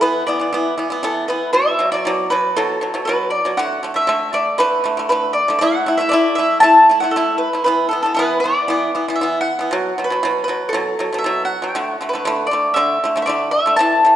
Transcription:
0.01 pipa E3 B3, mandolin B4
0.27 pipa E3 B3, mandolin D5
0.40 pipa E3 B3
0.53 pipa E3 B3
0.78 pipa E3 B3
0.90 pipa E3 B3
1.03 pipa E3 B3, mandolin A4
1.28 pipa E3 B3, mandolin B4
1.53 pipa B2 F#3, mandolin E5
1.79 pipa B2 F#3
1.92 pipa B2 F#3, mandolin D5
2.05 pipa B2 F#3
2.30 pipa B2 F#3, mandolin B4
2.56 pipa B2 F#3, mandolin A4
2.81 pipa B2 F#3
2.94 pipa B2 F#3
3.05 pipa B2 F#3, mandolin B4
3.30 mandolin D5
3.45 pipa B2 F#3
3.57 pipa D3 A3, mandolin F#5
3.83 pipa D3 A3
3.94 pipa D3 A3, mandolin E5
4.07 pipa D3 A3
4.33 pipa D3 A3, mandolin D5
4.58 pipa D3 A3, mandolin B4
4.84 pipa D3 A3
4.97 pipa D3 A3
5.09 pipa D3 A3, mandolin B4
5.33 mandolin D5
5.48 pipa D3 A3
5.59 pipa A3 E4, mandolin F#5
5.86 pipa A3 E4
5.98 pipa A3 E4, mandolin E5
6.09 pipa A3, mandolin D5
6.13 pipa E4
6.35 pipa A3 E4, mandolin E5
6.60 pipa A3 E4, mandolin A5
6.89 pipa A3 E4
7.00 pipa A3 E4, mandolin F#5
7.11 mandolin A4
7.16 pipa A3 E4
7.38 mandolin B4
7.53 pipa A3 E4
7.64 pipa E3 B3, mandolin B4
7.89 pipa E3, mandolin A4
7.93 pipa B3
8.03 pipa E3 B3, mandolin A4
8.15 pipa E3, mandolin B4
8.19 pipa B3
8.40 pipa E3, mandolin D5
8.45 pipa B3
8.68 pipa E3 B3
8.95 pipa E3 B3
9.08 pipa E3 B3
9.16 mandolin E5
9.21 pipa E3 B3
9.41 mandolin F#5
9.59 pipa E3 B3
9.71 pipa B2 F#3
9.98 pipa B2 F#3
10.04 mandolin B4
10.10 pipa B2 F#3
10.23 pipa B2 F#3
10.44 pipa B2, mandolin B4
10.49 pipa F#3
10.69 pipa B2, mandolin A4
10.74 pipa F#3
10.99 pipa B2 F#3
11.13 pipa B2 F#3
11.18 mandolin E5
11.24 pipa B2 F#3
11.45 mandolin F#5
11.62 pipa B2 F#3
11.75 pipa D3 A3
12.01 pipa D3 A3
12.09 mandolin B4
12.13 pipa D3 A3
12.25 pipa D3 A3
12.47 mandolin D5
12.51 pipa D3 A3
12.74 pipa D3 A3, mandolin E5
13.04 pipa D3 A3
13.16 pipa D3 A3
13.22 mandolin D5 E5
13.27 pipa D3 A3
13.51 mandolin E5
13.66 pipa D3 A3
13.76 pipa A2, mandolin A5
13.80 pipa E3
14.05 pipa A2 E3

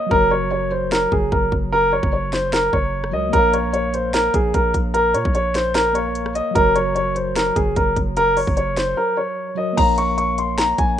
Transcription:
Already playing: tine electric piano A#3 A#4 C#5 F5
0.07 tine electric piano F#3 F#4
0.11 808-style bass F#1, grand piano A#4, tine electric piano A#4, kick
0.16 tine electric piano C#5
0.31 grand piano C#5
0.51 grand piano C#5
0.71 grand piano C5
0.92 grand piano A#4, snare
1.12 808-style bass F#1, grand piano G#4, kick
1.32 808-style bass F#1, grand piano A#4, kick
1.52 808-style bass F#1, kick
1.72 grand piano A#4
1.93 grand piano C#5
2.03 808-style bass F#1, kick
2.13 grand piano C#5
2.33 grand piano C5, snare
2.53 grand piano A#4, snare
2.73 808-style bass F#1, grand piano C#5, kick
3.04 cross-stick
3.11 808-style bass C#2, tine electric piano F#3 F#4 A#4, grand piano D#5
3.15 tine electric piano C#5
3.29 tine electric piano A#3 A#4
3.33 808-style bass A#1, grand piano A#4, tine electric piano C#5, kick, closed hi-hat
3.38 tine electric piano F5
3.54 grand piano C#5, closed hi-hat
3.73 grand piano C#5, closed hi-hat
3.94 grand piano C5, closed hi-hat
4.14 grand piano A#4, snare, closed hi-hat
4.34 808-style bass A#1, grand piano G#4, kick, closed hi-hat
4.54 808-style bass A#1, grand piano A#4, kick, closed hi-hat
4.74 808-style bass A#1, kick, closed hi-hat
4.94 grand piano A#4, closed hi-hat
5.14 808-style bass A#2, grand piano C#5, closed hi-hat
5.25 808-style bass A#1, kick
5.35 grand piano C#5, closed hi-hat
5.55 grand piano C5, snare, closed hi-hat
5.75 grand piano A#4, snare, closed hi-hat
5.93 tine electric piano A#3 A#4 C#5, grand piano C#5, closed hi-hat
5.98 tine electric piano F5
6.15 closed hi-hat
6.26 cross-stick
6.35 grand piano D#5, closed hi-hat
6.51 tine electric piano F#3 F#4
6.55 808-style bass F#1, grand piano A#4, tine electric piano A#4, kick, closed hi-hat
6.60 tine electric piano C#5
6.75 grand piano C#5, closed hi-hat
6.96 grand piano C#5, closed hi-hat
7.15 grand piano C5, closed hi-hat
7.36 grand piano A#4, snare, closed hi-hat
7.56 808-style bass F#1, grand piano G#4, kick, closed hi-hat
7.76 808-style bass F#1, grand piano A#4, kick, closed hi-hat
7.96 808-style bass F#1, kick, closed hi-hat
8.17 grand piano A#4, closed hi-hat
8.37 grand piano C#5, open hi-hat
8.47 808-style bass F#1, kick
8.57 grand piano C#5, closed hi-hat
8.77 grand piano C5, snare, closed hi-hat
8.97 grand piano A#4
9.17 grand piano C#5
9.55 tine electric piano F#3 F#4 A#4, grand piano D#5
9.60 tine electric piano C#5
9.73 tine electric piano A#3 A#4
9.77 808-style bass A#1, tine electric piano C#5, grand piano A#5, kick, closed hi-hat, crash
9.82 tine electric piano F5
9.98 grand piano C#6, closed hi-hat
10.18 grand piano C#6, closed hi-hat
10.38 grand piano C6, closed hi-hat
10.58 grand piano A#5, snare, closed hi-hat
10.78 808-style bass A#1, grand piano G#5, kick, closed hi-hat

